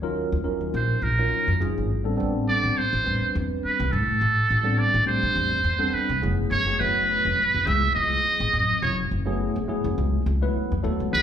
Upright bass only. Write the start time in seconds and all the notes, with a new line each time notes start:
Already playing: D#2
0.32 D#2
0.45 muted upright bass stroke
0.61 D#2
0.74 A#1
1.02 A#1
1.47 F#2
1.62 F#1
1.78 G#1
1.91 A1
2.20 A1
2.64 A1
2.77 muted upright bass stroke
2.93 A1
3.06 E2
3.35 E2
3.64 muted upright bass stroke
3.80 C2
3.93 A2
4.21 A1
4.50 A1
4.94 A1
5.08 muted upright bass stroke
5.23 A1
5.36 E2
5.64 E2
5.93 muted upright bass stroke
6.09 C2
6.23 F#1
6.51 F#1
6.81 F#1
7.25 F#1
7.39 muted upright bass stroke
7.54 F#1
7.67 C#2
7.96 C#2
8.26 muted upright bass stroke
8.40 A1
8.53 F#2
8.82 F#1
9.11 F#1
9.56 F#1
9.69 muted upright bass stroke
9.84 F#1
9.98 C#2
10.26 C#2
10.55 muted upright bass stroke
10.72 E2
10.84 D#2
11.00 C#2
11.13 C#2